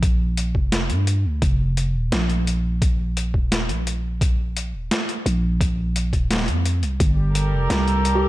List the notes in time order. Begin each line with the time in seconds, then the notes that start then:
Already playing: A#1
0.03 kick, closed hi-hat
0.37 closed hi-hat
0.55 F1, kick
0.72 snare, closed hi-hat
0.90 G2, closed hi-hat
1.07 closed hi-hat
1.25 D2
1.42 F1, kick, closed hi-hat
1.77 closed hi-hat
1.95 D#1
2.12 A#1, snare, closed hi-hat
2.30 closed hi-hat
2.47 closed hi-hat
2.82 kick, closed hi-hat
3.17 closed hi-hat
3.34 D#1, kick
3.52 snare, closed hi-hat
3.69 A#1, closed hi-hat
3.87 closed hi-hat
4.21 kick, closed hi-hat
4.57 closed hi-hat
4.74 D#1
4.91 snare, closed hi-hat
5.09 closed hi-hat
5.26 A#1, closed hi-hat
5.61 kick, closed hi-hat
5.96 closed hi-hat
6.13 D#1, kick, closed hi-hat
6.31 snare, closed hi-hat
6.33 snare
6.36 snare
6.39 snare
6.42 snare
6.44 snare
6.46 F2, snare, closed hi-hat
6.66 closed hi-hat
6.83 C2, closed hi-hat
7.00 G1 G3, kick, closed hi-hat
7.14 G4
7.32 A4 A#4, closed hi-hat
7.53 F1
7.70 C2, snare, closed hi-hat
7.88 closed hi-hat
8.05 closed hi-hat
8.15 G4